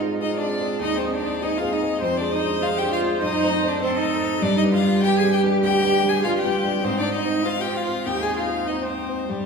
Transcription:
Already playing: cello D#4, viola F4
0.00 grand piano G#3 C4 G#4
0.20 grand piano G#3 C4 G#4, cello D#4, violin D#4 D#5
0.36 grand piano G#3, cello D4, violin D4 D5
0.40 grand piano C4 G#4
0.60 grand piano G#3 C4 G#4
0.80 grand piano D#2, viola D#4, violin D#4 D#5, cello D#4
0.96 violin C4 C5, cello C4
1.02 grand piano G#3 C4 G#4
1.12 cello D4, violin D4 D5
1.22 grand piano G#3 C4 G#4
1.41 grand piano G#3 C4 G#4, cello D#4, violin D#4 D#5, viola G#4
1.57 cello F4, violin F4 F5
1.61 grand piano G#3 C4 G#4
1.72 cello D#4, violin D#4 D#5
1.82 grand piano G#3 C4 G#4
2.02 grand piano F2, cello C4, violin C4 C5, viola C5
2.17 cello D4, violin D4 D5
2.21 grand piano G#3 D4 G#4
2.31 cello D#4, violin D#4 D#5
2.41 grand piano G#3 D4 G#4
2.61 grand piano G#3 D4 G#4, cello F4, violin F4 F5
2.77 cello G4, violin G4 G5
2.82 grand piano G#3 D4 G#4
2.91 cello F4, violin F4 F5
3.02 grand piano G#3 D4 G#4
3.22 grand piano F#2, cello D#4, violin D#4 D#5
3.42 grand piano A3 C4 C5
3.62 grand piano A3 C4 C5
3.67 cello D4, violin D4 D5
3.81 grand piano A3 C4 C5, cello C4, violin C4 C5, viola A4
3.96 cello D#4, violin D#4 D#5
4.02 grand piano A3 C4 C5
4.22 grand piano A3 C4 C5
4.41 grand piano G2, cello D4, violin D4 D5, viola G4
4.56 cello D#4, violin D#4 D#5
4.63 grand piano G3 D4 B4
4.72 cello F4, violin F4 F5
4.83 grand piano G3 D4 B4
5.03 grand piano G3 D4 B4, cello G4, violin G4 G5
5.18 cello G#4, violin G#4 G#5
5.23 grand piano G3 D4 B4
5.32 cello G4, violin G4 G5
5.43 grand piano G3 D4 B4
5.62 grand piano D2, cello G4, violin G4 G5
5.83 grand piano G3 D4 B4
6.04 grand piano G3 D4 B4
6.08 cello G#4, violin G#4 G#5
6.23 grand piano G3 D4 B4, viola F4, cello F4, violin F4 F5
6.38 cello G4, violin G4 G5
6.44 grand piano G3 D4 B4
6.64 grand piano G3 D4 B4
6.83 grand piano G#2, cello C4, violin C4 C5, viola D#4
6.99 cello D4, violin D4 D5
7.05 grand piano C4 C5
7.14 violin D#4 D#5, cello D#4
7.25 grand piano C4 C5
7.45 grand piano C4 C5, cello F4, viola F4, violin F4 F5
7.60 cello G4, violin G4 G5
7.66 grand piano C4 C5
7.75 cello F4, violin F4 F5
7.86 grand piano C4 C5
8.05 grand piano D#2, viola D#4, cello G4, violin G4 G5
8.21 cello G#4, violin G#4 G#5
8.27 grand piano C4 C5
8.36 cello F4, violin F4 F5
8.48 grand piano C4 C5
8.66 grand piano C4 C5, cello D#4, violin D#4 D#5
8.82 violin C4 C5, cello C4
9.08 grand piano C4 C5
9.29 grand piano G2, cello G3, violin G3 G4, viola G4

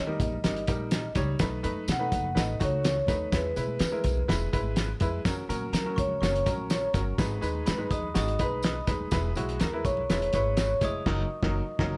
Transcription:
Already playing: upright bass D#3
0.00 vibraphone D#5
0.07 grand piano G3 D#4 A#4, muted conga, high conga
0.20 upright bass A#1, vibraphone D#5, kick, closed hi-hat, tambourine, low conga
0.32 low conga
0.44 upright bass G1, grand piano G3 D#4 A#4, snare, closed hi-hat, tambourine
0.56 closed hi-hat, muted conga
0.67 upright bass A#1, grand piano G3 D#4 A#4, kick, closed hi-hat, tambourine
0.80 high conga
0.91 snare, closed hi-hat, tambourine, muted conga
1.04 muted conga
1.15 upright bass C#2, grand piano G3 D#4 C#5, kick, snare, closed hi-hat, tambourine, high conga, low conga
1.39 upright bass B1, grand piano A3 D#4 B4, kick, snare, closed hi-hat, tambourine
1.63 upright bass F#2, grand piano A3 D#4 B4, closed hi-hat, tambourine
1.77 high conga
1.88 upright bass B2, vibraphone F#5, snare, closed hi-hat, tambourine, muted conga
1.99 grand piano A3 D#4 B4, high conga
2.12 upright bass F#1, kick, closed hi-hat, tambourine, low conga
2.24 low conga
2.35 upright bass A1, grand piano A3 D#4 B4, vibraphone D#5, snare, closed hi-hat, tambourine, muted conga
2.60 upright bass C#2, grand piano A3 D#4 F#4, vibraphone C#5, kick, closed hi-hat, tambourine
2.72 high conga
2.83 snare, closed hi-hat, tambourine, muted conga
3.07 upright bass D#2, grand piano A3 D#4 B4, kick, snare, closed hi-hat, tambourine, high conga, low conga
3.32 upright bass E2, grand piano G#3 E4 B4, vibraphone B4, kick, snare, closed hi-hat, tambourine, muted conga
3.44 muted conga
3.56 upright bass B2, grand piano G#3 E4 B4, closed hi-hat, tambourine
3.68 high conga
3.79 upright bass E3, snare, closed hi-hat, tambourine
3.92 grand piano G#3 E4 A#4, muted conga, high conga
4.04 upright bass B1, kick, closed hi-hat, tambourine, low conga
4.17 low conga
4.28 upright bass E1, grand piano G#3 E4 B4, kick, snare, closed hi-hat, tambourine, muted conga
4.41 muted conga
4.53 upright bass G#1, grand piano G#3 E4 B4, kick, closed hi-hat, tambourine, high conga
4.64 high conga
4.76 snare, closed hi-hat, tambourine
4.88 muted conga
5.00 upright bass F2, grand piano G#3 E4 B4, kick, closed hi-hat, tambourine, high conga, low conga
5.25 upright bass F#2, grand piano F#3 C#4 A#4, kick, snare, closed hi-hat, tambourine
5.38 muted conga
5.49 upright bass A#2, grand piano F#3 C#4 A#4, closed hi-hat, tambourine
5.61 high conga
5.73 upright bass F#3, vibraphone A#4, glockenspiel A#5, snare, closed hi-hat, tambourine, muted conga
5.84 grand piano F#3 C#4 A#4, high conga
5.96 upright bass C#2, vibraphone C#5, glockenspiel C#6, kick, closed hi-hat, tambourine, low conga
6.09 low conga
6.21 upright bass F#1, grand piano F#3 C#4 A#4, vibraphone C#5, glockenspiel C#6, snare, closed hi-hat, tambourine
6.36 closed hi-hat
6.46 grand piano F#3 C#4 A#4, vibraphone A#4, glockenspiel A#5, kick, closed hi-hat, tambourine
6.58 high conga
6.70 vibraphone C#5, glockenspiel C#6, snare, closed hi-hat, tambourine, muted conga
6.94 upright bass G1, grand piano F#3 C#4 A#4, kick, snare, closed hi-hat, tambourine, high conga, low conga
7.18 upright bass G#1, grand piano G#3 D#4 B4, kick, snare, closed hi-hat, tambourine
7.31 muted conga
7.41 upright bass D#2, grand piano G#3 D#4 B4, closed hi-hat, tambourine
7.55 high conga
7.66 upright bass G#2, vibraphone B4, glockenspiel B5, snare, closed hi-hat, tambourine
7.78 grand piano G#3 D#4 B4, muted conga, high conga
7.91 upright bass D#2, vibraphone D#5, glockenspiel D#6, kick, closed hi-hat, tambourine, low conga
8.03 low conga
8.14 upright bass G#1, grand piano G#3 D#4 F#4, vibraphone D#5, glockenspiel D#6, snare, closed hi-hat, tambourine
8.28 closed hi-hat, muted conga
8.39 upright bass B1, grand piano G#3 D#4 B4, vibraphone B4, glockenspiel B5, kick, closed hi-hat, tambourine
8.51 high conga
8.63 vibraphone D#5, glockenspiel D#6, snare, closed hi-hat, tambourine, muted conga
8.76 muted conga
8.87 upright bass D#1, grand piano G#3 D#4 B4, kick, snare, closed hi-hat, tambourine, high conga, low conga
9.11 upright bass E1, grand piano G#3 E4 B4, kick, snare, closed hi-hat, tambourine
9.25 muted conga
9.35 upright bass B1, grand piano G#3 E4 F#4, closed hi-hat, tambourine
9.49 closed hi-hat, high conga
9.60 upright bass E2, vibraphone A#4, glockenspiel A#5, snare, closed hi-hat, tambourine
9.73 grand piano G#3 E4 B4, high conga
9.85 upright bass B1, vibraphone C#5, glockenspiel C#6, kick, closed hi-hat, tambourine, low conga
9.97 low conga
10.10 upright bass E1, grand piano G#3 E4 B4, snare, closed hi-hat, tambourine, muted conga
10.22 closed hi-hat, muted conga
10.33 upright bass G#1, grand piano G#3 E4 B4, vibraphone C#5, glockenspiel C#6, kick, closed hi-hat, tambourine
10.46 high conga
10.57 snare, closed hi-hat, tambourine
10.71 muted conga
10.81 upright bass F1, grand piano G#3 E4 C#5, vibraphone D#5, glockenspiel D#6, kick, snare, closed hi-hat, tambourine, high conga, low conga
11.06 upright bass F#1, grand piano F#3 D#4 A#4, kick, snare, crash
11.43 upright bass F#1, grand piano F#3 D#4 A#4, kick, snare
11.79 upright bass F#1, grand piano F#3 D#4 A#4, kick, snare

